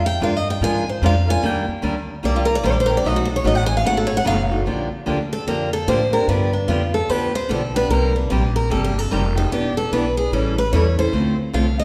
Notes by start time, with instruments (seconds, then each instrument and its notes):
Already playing: upright bass F2
0.06 steel-string acoustic guitar G5
0.20 upright bass G2, steel-string acoustic guitar F3 G#3 D4 F4 A#4 F5
0.37 steel-string acoustic guitar D#5
0.50 steel-string acoustic guitar G5
0.61 upright bass G#2, steel-string acoustic guitar F3 G#3 D4 F4 A#4 G#5
0.89 steel-string acoustic guitar C5
1.02 upright bass F2, steel-string acoustic guitar F3 G#3 D4 F4 A#4
1.06 steel-string acoustic guitar F5
1.27 steel-string acoustic guitar D4 F4 A#4 G#5
1.42 upright bass D#2, steel-string acoustic guitar D#3 G3 A#3 D4 G4 G5
1.68 muted upright bass stroke
1.82 upright bass D2, steel-string acoustic guitar D#3 G3 A#3 D4 G4
2.23 upright bass C2, steel-string acoustic guitar D#3 G3 A#3 D4 G4 D5
2.36 steel-string acoustic guitar F4
2.45 steel-string acoustic guitar A#4
2.55 steel-string acoustic guitar D5
2.63 upright bass A#1, steel-string acoustic guitar D#3 G3 A#3 D4 G4 C5
2.72 steel-string acoustic guitar D5
2.80 steel-string acoustic guitar C5
2.86 steel-string acoustic guitar G4 A#4
2.90 steel-string acoustic guitar A#3 D4
2.97 steel-string acoustic guitar D5
3.04 upright bass B1, steel-string acoustic guitar B2 F#3 A3 D#4 F#4 D#5
3.16 steel-string acoustic guitar F#4
3.25 steel-string acoustic guitar A4
3.36 steel-string acoustic guitar C#5
3.44 upright bass A1, steel-string acoustic guitar B2 F#3 A3 D#4 F#4 D#5
3.55 steel-string acoustic guitar F#5
3.66 steel-string acoustic guitar G#5
3.77 steel-string acoustic guitar F5
3.84 upright bass G#1, steel-string acoustic guitar B2 F#3 A3 D#4 F#4 F#5
3.97 steel-string acoustic guitar A4
4.07 steel-string acoustic guitar C#5
4.17 steel-string acoustic guitar F#5
4.25 upright bass F#1, steel-string acoustic guitar B2 F#3 A3 D#4 F#4 F5
4.51 steel-string acoustic guitar A3 D#4 F#4
4.66 upright bass A#1, steel-string acoustic guitar D3 F3 A#3 D4 G4
4.92 muted upright bass stroke
5.06 upright bass D2, steel-string acoustic guitar D3 F3 A#3 D4 G4
5.33 steel-string acoustic guitar A4
5.47 upright bass F2, steel-string acoustic guitar D3 F3 A#3 D4 G4 A#4
5.73 steel-string acoustic guitar A4
5.87 upright bass A2, steel-string acoustic guitar D3 F3 A#3 D4 G4 C5
6.13 steel-string acoustic guitar A#3 D4 G4 A#4
6.28 upright bass G2, steel-string acoustic guitar D3 F3 B3 D4 G4 B4
6.53 steel-string acoustic guitar D4
6.68 upright bass F2, steel-string acoustic guitar D3 F3 B3 D4 F4 G4
6.94 steel-string acoustic guitar A4
7.08 upright bass D2, steel-string acoustic guitar D3 F3 B3 D4 G4 B4
7.35 steel-string acoustic guitar C5
7.49 upright bass B1, steel-string acoustic guitar D3 F3 B3 D4 G4 A4
7.74 steel-string acoustic guitar B3 D4 G4 B4
7.89 upright bass C2, steel-string acoustic guitar C3 G3 A#3 D#4 G4 A#4
8.16 steel-string acoustic guitar D4
8.30 upright bass A#1, steel-string acoustic guitar C3 G3 A#3 D#4 G4
8.56 steel-string acoustic guitar A#4
8.70 upright bass G1, steel-string acoustic guitar C3 G3 A#3 D#4 G4 A4
8.84 steel-string acoustic guitar G4
8.99 steel-string acoustic guitar A4
9.11 upright bass F1, steel-string acoustic guitar C3 G3 A#3 D#4 G4 A#4
9.36 steel-string acoustic guitar A#3 D#4 G4 A4
9.52 upright bass E1, steel-string acoustic guitar E3 B3 D4 G4
9.77 steel-string acoustic guitar A4
9.92 upright bass B1, steel-string acoustic guitar E3 B3 D4 G4 B4
10.17 steel-string acoustic guitar G#4
10.32 upright bass A1, steel-string acoustic guitar E3 G3 C#4 E4 A4
10.58 steel-string acoustic guitar B4
10.73 upright bass E2, steel-string acoustic guitar E3 G3 C#4 E4 A4 C#5
10.98 steel-string acoustic guitar C#4 E4 A4 C5
11.13 upright bass D2, steel-string acoustic guitar D3 A3 C4 F4 A4
11.53 upright bass C2, steel-string acoustic guitar D3 A3 C4 F4 A4 F5
11.80 steel-string acoustic guitar D#5